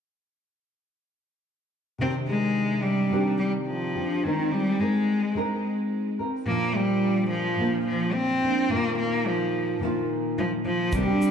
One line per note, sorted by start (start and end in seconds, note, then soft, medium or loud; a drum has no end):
1.98 3.10 C3 medium
1.98 3.11 D#3 medium
1.98 3.12 C4 medium
1.98 2.14 C4 medium
2.03 3.12 D4 medium
2.03 3.12 G4 medium
2.28 2.84 G#3 medium
2.83 3.38 G3 medium
3.11 3.95 C3 medium
3.11 4.00 D#3 medium
3.11 3.98 C4 medium
3.11 3.96 D4 medium
3.11 3.94 G4 medium
3.39 3.51 G3 medium
3.67 4.25 F3 medium
3.95 4.24 C4 soft
3.95 4.24 D4 soft
3.95 4.23 G4 soft
4.23 4.54 D#3 medium
4.23 4.78 G#3 medium
4.23 4.79 C4 medium
4.23 4.80 D#4 medium
4.23 4.81 A#4 medium
4.52 4.82 G3 medium
4.79 5.34 G#3 soft
4.79 5.35 G#3 medium
4.79 5.35 C4 soft
4.79 5.35 D#4 soft
4.79 5.37 A#4 soft
5.35 6.18 G#3 medium
5.35 6.19 C4 medium
5.35 6.19 D#4 medium
5.35 6.19 A#4 medium
6.19 6.48 C4 soft
6.19 6.47 D#4 soft
6.19 6.46 A#4 soft
6.46 7.56 A#2 medium
6.46 7.58 F3 medium
6.46 6.77 A#3 medium
6.46 7.59 A#3 medium
6.50 7.58 D4 medium
6.50 7.60 F4 medium
6.75 7.29 G3 medium
7.30 7.82 F3 medium
7.58 8.41 A#2 medium
7.58 8.70 F3 medium
7.58 8.44 A#3 medium
7.58 8.42 D4 medium
7.58 8.41 F4 medium
7.86 8.15 F3 medium
8.14 8.72 C4 medium
8.42 8.71 A#3 soft
8.42 8.70 D4 soft
8.42 8.69 F4 soft
8.69 9.79 A#2 medium
8.69 9.81 D#3 medium
8.69 8.97 A#3 medium
8.69 9.81 A#3 medium
8.73 9.84 D#4 medium
8.73 9.83 F4 medium
8.98 9.28 A#3 medium
9.27 9.82 F3 medium
9.80 10.92 A#2 medium
9.80 10.92 D#3 medium
9.80 10.93 A#3 medium
9.84 10.94 D#4 medium
9.84 10.94 F4 medium
10.39 10.51 F3 medium
10.65 10.95 F3 medium
10.92 11.08 C3 medium
10.92 11.08 D#3 medium
10.92 11.31 G3 medium
10.92 11.09 C4 medium
10.92 11.08 D4 medium
10.92 11.06 G4 medium
10.92 kick medium
10.92 shaker medium
11.07 11.31 C4 soft
11.07 11.31 D4 soft
11.07 11.31 G4 soft
11.22 shaker soft